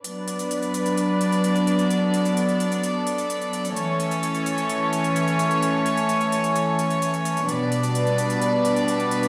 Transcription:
<<
  \new Staff \with { instrumentName = "String section" } { \time 4/4 \key b \minor \tempo 4 = 129 << { <fis b d' d''>1~ | <fis b d' d''>1 | <e a cis' cis''>1~ | <e a cis' cis''>1 |
<b, g b d' d''>1 | } \\ { b'1 | a'1~ | a'1~ | a'1 |
b'1 | } >> }
  \new DrumStaff \with { instrumentName = "Drums" } \drummode { \time 4/4 hh8 hh16 hh16 hh16 hh16 hh16 hh16 hh8 hh16 hh16 hh16 hh16 hh16 hh16 | hh8 hh16 hh16 hh16 hh16 hh16 hh16 hh8 hh16 hh16 hh16 hh16 hh16 hh16 | hh8 hh16 hh16 hh16 hh16 hh16 hh16 hh8 hh16 hh16 hh16 hh16 hh16 hh16 | hh8 hh16 hh16 hh16 hh16 hh16 hh16 hh8 hh16 hh16 hh16 hh16 hh16 hh16 |
hh8 hh16 hh16 hh16 hh16 hh16 hh16 hh8 hh16 hh16 hh16 hh16 hh16 hh16 | }
>>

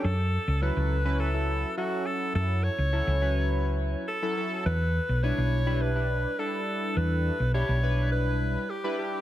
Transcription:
<<
  \new Staff \with { instrumentName = "Alto saxophone" } { \time 4/4 \key fis \phrygian \tempo 4 = 104 a'4 b'4 a'4 fis'8 a'8 | a'8 cis''2 r8 a'4 | b'4 cis''4 b'4 a'4 | b'4 cis''4 b'4 g'4 | }
  \new Staff \with { instrumentName = "Analog polysynth" } { \time 4/4 \key fis \phrygian r4 <fis cis' e' a'>8 r16 <fis cis' e' b'>8 <fis cis' e' a'>8 r16 <fis cis' e' a'>4~ | <fis cis' e' a'>8 r8 <fis cis' e' a'>8 <fis cis' e' b'>4. r16 <fis cis' e' a'>16 <fis cis' e' a'>8 | r4 <g d' e' b'>8 r16 <g d' e' b'>8 <g d' e' b'>8 r16 <g d' e' a'>4~ | <g d' e' a'>8 r8 <g d' e' g'>8 <g d' e' b'>4. r16 <g d' e' b'>16 <g d' e' g'>8 | }
  \new Staff \with { instrumentName = "Fingered electric bass" } { \clef bass \time 4/4 \key fis \phrygian fis,8. cis,8 cis,2 r8. | fis,8. cis,8 cis,2 r8. | e,8. b,,8 b,,2 r8. | e,8. b,,8 b,,2 r8. | }
>>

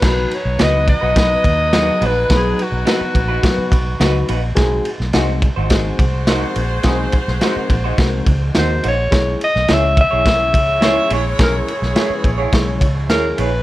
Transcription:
<<
  \new Staff \with { instrumentName = "Alto saxophone" } { \time 4/4 \key b \major \tempo 4 = 106 b'8 cis''8 dis''8 dis''2 b'8 | gis'8 fis'2. r8 | r1 | r2. bis'8 cis''8~ |
cis''8 dis''8 e''8 e''2 cis''8 | ais'8 gis'2 r8 ais'16. ais'32 b'8 | }
  \new Staff \with { instrumentName = "Clean electric guitar" } { \time 4/4 \key b \major r4 <dis' fis' b'>16 r8 <dis' fis' b'>16 r4 <dis' fis' b'>16 r16 <dis' fis' b'>16 r16 | r4 <dis' fis' b'>16 r8 <dis' fis' b'>16 r4 <dis' fis' b'>16 r16 <dis' fis' b'>16 r16 | r4 <dis' fis' bis'>16 r8 <dis' fis' bis'>16 r4 <dis' fis' bis'>16 r8. | r4 <dis' fis' bis'>16 r8 <dis' fis' bis'>16 r4 <dis' fis' bis'>16 r16 <dis' fis' bis'>16 r16 |
r4 <e' gis' cis''>16 r8 <e' gis' cis''>16 r4 <e' gis' cis''>16 r16 <e' gis' cis''>16 r16 | r4 <e' gis' cis''>16 r8 <e' gis' cis''>16 r4 <e' gis' cis''>16 r16 <e' gis' cis''>16 r16 | }
  \new Staff \with { instrumentName = "Saxophone section" } { \time 4/4 \key b \major <fis dis' b'>1~ | <fis dis' b'>2.~ <fis dis' b'>8 r8 | r2 <gis fis' bis'>2~ | <gis fis' bis'>2.~ <gis fis' bis'>8 r8 |
r2 <gis e' cis''>2~ | <gis e' cis''>2.~ <gis e' cis''>8 r8 | }
  \new Staff \with { instrumentName = "Reed electric piano" } { \time 4/4 \key b \major <fis b dis' fis' b'>8 r8 <fis b dis' fis' b'>8 r8 <fis b dis' fis' b'>8 r8 <fis b dis' fis' gis'>8 r8 | <fis b dis' fis' b'>8 r8 <fis b dis' fis' b'>8 r8 <fis b dis' fis' b'>8 r8 <fis b dis' fis' b'>8 r8 | <gis bis dis' fis' gis'>8 r8 <gis bis dis' fis' gis'>8 r8 <gis bis dis' fis' gis'>8 r8 <gis bis dis' fis' ais'>8 r8 | <gis bis dis' fis' gis'>8 r8 <gis bis dis' fis' ais'>8 r8 <gis bis dis' fis' ais'>8 r8 <gis bis dis' fis' ais'>8 r8 |
<gis cis' e' gis' cis''>8 r8 <gis cis' e' gis' cis''>8 r8 <gis cis' e' gis' cis''>8 r8 <gis cis' e' gis' cis''>8 r8 | <gis cis' e' gis' ais'>8 r8 <gis cis' e' gis' b'>8 r8 <gis cis' e' gis' cis''>8 r8 <gis cis' e' gis' cis''>8 r8 | }
  \new Staff \with { instrumentName = "Fingered electric bass" } { \clef bass \time 4/4 \key b \major b,,8 r16 b,,16 cis,8. b,,8. dis,4 ais,,8 | b,,8 r16 b,,16 r8 ais,,8 r8 b,,8 cis,8 ais,,8 | b,,8 r16 b,,16 bis,,8. gis,,8. bis,,4 ais,,8 | b,,8 r16 b,,16 r8 ais,,8 bis,,8 cis,8 dis,8 ais,,8 |
b,,8 r16 b,,16 cis,8. b,,8. cis,4 ais,,8 | b,,8 r16 b,,16 r8 ais,,8 b,,8 cis,8 dis,8 ais,,8 | }
  \new DrumStaff \with { instrumentName = "Drums" } \drummode { \time 4/4 <cymc bd sn>8 cymr8 <cymr sn>8 <bd cymr>8 <bd cymr sn>8 <bd cymr>8 <cymr sn>8 cymr8 | <bd cymr sn>8 cymr8 <cymr sn>8 <bd cymr>8 <bd cymr sn>8 <bd cymr>8 <cymr sn>8 cymr8 | <bd cymr sn>8 cymr16 sn16 <cymr sn>8 <bd cymr>8 <bd cymr sn>8 <bd cymr>8 <cymr sn>8 cymr8 | <bd cymr sn>8 <bd cymr>16 sn16 <cymr sn>8 <bd cymr>8 <bd cymr sn>8 <bd cymr>8 <cymr sn>8 cymr8 |
<bd cymr sn>8 cymr16 sn16 <cymr sn>8 <bd cymr>8 <bd cymr sn>8 <bd cymr>8 <cymr sn>8 cymr8 | <bd cymr sn>8 cymr16 sn16 <cymr sn>8 <bd cymr>8 <bd cymr sn>8 <bd cymr>8 <cymr sn>8 cymr8 | }
>>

